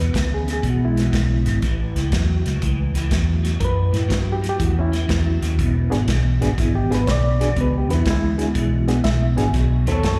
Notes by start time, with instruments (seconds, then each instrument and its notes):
Already playing: clean electric guitar E2 B2, fingered electric bass E2, reed electric piano B4
0.12 fingered electric bass D2, clean electric guitar E2 C#3, kick, snare, closed hi-hat
0.34 reed electric piano G#4
0.47 clean electric guitar E2 C#3, snare, closed hi-hat
0.53 reed electric piano G#4
0.62 fingered electric bass B1, clean electric guitar E2 B2, kick, closed hi-hat
0.70 reed electric piano F#4
0.85 reed electric piano G#3 E4
0.96 clean electric guitar E2 B2, snare, closed hi-hat
1.12 fingered electric bass B1, clean electric guitar E2 C#3, kick, snare, closed hi-hat
1.45 fingered electric bass G#1, clean electric guitar E2 C#3, snare, closed hi-hat
1.62 fingered electric bass A1, clean electric guitar A2 E3, kick, snare, closed hi-hat
1.95 fingered electric bass C#2, clean electric guitar A2 E3, snare, closed hi-hat
2.12 fingered electric bass E2, clean electric guitar A2 F#3, kick, snare, closed hi-hat
2.45 fingered electric bass C#2, clean electric guitar A2 F#3, snare, closed hi-hat
2.61 fingered electric bass C#2, clean electric guitar A2 E3, kick, closed hi-hat
2.94 fingered electric bass C#2, clean electric guitar A2 E3, snare, closed hi-hat
3.10 fingered electric bass E2, clean electric guitar A2 F#3, kick, snare, closed hi-hat
3.43 clean electric guitar A2 F#3, snare, closed hi-hat
3.59 fingered electric bass F#2, clean electric guitar A2 E3, reed electric piano A#4, kick, closed hi-hat
3.65 reed electric piano B4
3.92 clean electric guitar A2 E3, fingered electric bass A2, snare, closed hi-hat
4.08 fingered electric bass G2, clean electric guitar A2 F#3, kick, snare, closed hi-hat
4.32 reed electric piano G4
4.42 clean electric guitar A2 F#3, snare, closed hi-hat
4.49 reed electric piano G4
4.58 fingered electric bass E2, clean electric guitar A2 E3, kick, closed hi-hat
4.65 reed electric piano F#4
4.79 reed electric piano C#4 E4
4.92 clean electric guitar A2 E3, snare, closed hi-hat
5.08 fingered electric bass E2, clean electric guitar A2 F#3, kick, snare, closed hi-hat
5.42 fingered electric bass D#2, clean electric guitar A2 F#3, snare, closed hi-hat
5.58 fingered electric bass E1, clean electric guitar E2 B2, kick, closed hi-hat
5.90 fingered electric bass G#1, clean electric guitar E2 B2, reed electric piano B3 D4 F#4 G#4, snare, closed hi-hat
6.08 fingered electric bass B1, clean electric guitar E2 C#3, kick, snare, closed hi-hat
6.41 fingered electric bass G#1, clean electric guitar E2 C#3, reed electric piano B3 D4 F#4 G#4, snare, closed hi-hat
6.58 fingered electric bass G#1, clean electric guitar E2 B2, reed electric piano E4, kick, snare, closed hi-hat
6.76 reed electric piano G4
6.91 fingered electric bass G#1, clean electric guitar E2 B2, reed electric piano B3 D4 F#4 G#4, snare, closed hi-hat
6.95 reed electric piano B4
7.07 fingered electric bass B1, clean electric guitar E2 C#3, reed electric piano C#5 D5, kick, snare, closed hi-hat
7.40 clean electric guitar E2 C#3, reed electric piano B3 D4 F#4 G#4, snare, closed hi-hat
7.56 fingered electric bass C#2, clean electric guitar E2 B2, kick, closed hi-hat
7.61 reed electric piano B4
7.78 reed electric piano G4
7.89 fingered electric bass E2, clean electric guitar E2 B2, reed electric piano B3 D4 F#4 B4, snare, closed hi-hat
7.94 reed electric piano E4
8.06 fingered electric bass D2, clean electric guitar E2 C#3, kick, snare, closed hi-hat
8.10 reed electric piano G#3 E4
8.37 clean electric guitar E2 C#3, reed electric piano B3 D4 F#4 G#4, snare, closed hi-hat
8.54 fingered electric bass B1, clean electric guitar E2 B2, kick, closed hi-hat
8.88 clean electric guitar E2 B2, reed electric piano B3 D4 F#4 G#4, snare, closed hi-hat
9.04 fingered electric bass B1, clean electric guitar E2 C#3, reed electric piano E5, kick, snare, closed hi-hat
9.36 fingered electric bass G#1, clean electric guitar E2 C#3, reed electric piano B3 D4 F#4 G#4 G#5, snare, closed hi-hat
9.53 fingered electric bass B1, clean electric guitar B2 F#3, kick, snare, closed hi-hat
9.86 fingered electric bass D#2, clean electric guitar B2 F#3, reed electric piano C#4 D#4 F#4 A4 C5, snare, closed hi-hat
9.92 reed electric piano A4 C#5
10.02 fingered electric bass F#2, clean electric guitar B2 G#3, kick, snare, closed hi-hat
10.07 reed electric piano A4 C#5